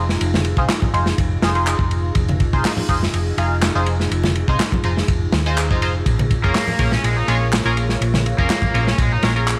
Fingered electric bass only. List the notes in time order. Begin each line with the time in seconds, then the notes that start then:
Already playing: F1
0.21 F1
0.57 C2
0.93 F1
1.18 F1
1.43 F1
1.79 F1
2.15 F1
2.53 C2
2.89 F1
3.13 F1
3.37 F1
3.75 F1
4.11 F1
4.48 C2
4.84 F1
5.08 F1
5.33 D#2
5.71 F1
6.06 A#1
6.44 F1
6.79 A#1
7.03 A#1
7.28 A#1
7.65 A#1
8.01 A#1
8.38 F1
8.74 A#1
8.98 A#1
9.23 A#1